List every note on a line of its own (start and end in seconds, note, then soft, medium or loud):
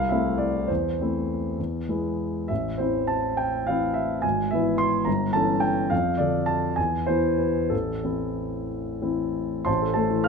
0.00 0.72 C2 soft
0.00 0.71 F5 medium
0.09 0.66 A3 soft
0.09 0.66 C4 soft
0.09 0.66 E4 soft
0.09 0.39 E5 medium
0.38 0.69 D5 medium
0.68 0.99 E2 soft
0.68 1.57 C5 soft
1.00 1.55 A3 soft
1.00 1.55 C4 soft
1.00 1.55 E4 soft
1.59 1.88 E2 soft
1.89 2.46 G#3 soft
1.89 2.46 B3 soft
1.89 2.46 E4 soft
2.48 2.79 A1 soft
2.48 2.78 E5 medium
2.78 3.64 E3 soft
2.78 3.64 C4 soft
2.78 3.64 E4 soft
2.78 3.08 C5 soft
3.07 3.38 A5 medium
3.37 3.67 G5 medium
3.67 4.20 E3 soft
3.67 4.20 C4 soft
3.67 4.20 E4 soft
3.67 3.95 F5 medium
3.94 4.22 E5 medium
4.22 4.50 G#1 soft
4.22 4.50 G#5 medium
4.51 5.03 E3 soft
4.51 5.03 B3 soft
4.51 5.04 E4 soft
4.51 4.79 E5 medium
4.78 5.06 C6 medium
5.05 5.34 G1 soft
5.05 5.34 A#5 medium
5.33 5.87 E3 soft
5.33 5.88 C#4 soft
5.33 5.88 A4 soft
5.33 5.62 A5 medium
5.60 5.90 G5 medium
5.90 6.19 F2 soft
5.90 6.19 F5 medium
6.17 6.73 D3 soft
6.17 6.74 D4 soft
6.17 6.74 A4 soft
6.17 6.47 D5 medium
6.46 6.76 A5 medium
6.76 7.07 E2 soft
6.76 7.07 G#5 medium
7.06 7.68 E3 soft
7.06 7.68 B3 soft
7.06 7.68 E4 soft
7.06 7.39 C5 medium
7.38 7.71 B4 soft
7.69 8.03 A1 soft
7.69 8.68 A4 soft
8.04 8.98 E3 soft
8.04 8.98 C4 soft
8.04 8.98 E4 soft
9.02 9.63 E3 soft
9.02 9.63 C4 soft
9.02 9.64 E4 soft
9.65 10.28 A1 soft
9.65 9.94 C5 soft
9.65 9.92 A5 soft
9.65 9.95 C6 medium
9.82 9.93 A4 soft
9.94 10.20 A3 soft
9.94 10.23 A4 soft
9.94 10.25 A5 medium
10.11 10.28 E3 soft
10.24 10.28 A4 soft
10.24 10.28 F5 soft
10.24 10.28 F6 medium